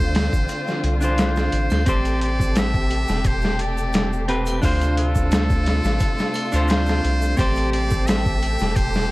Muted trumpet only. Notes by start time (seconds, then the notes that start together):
Already playing: C5
1.19 C5
1.88 D5
2.23 D5
2.58 E5
3.26 C5
3.61 D5
4.64 C5
4.98 A4
6.69 C5
7.38 D5
7.72 D5
8.07 E5
8.76 C5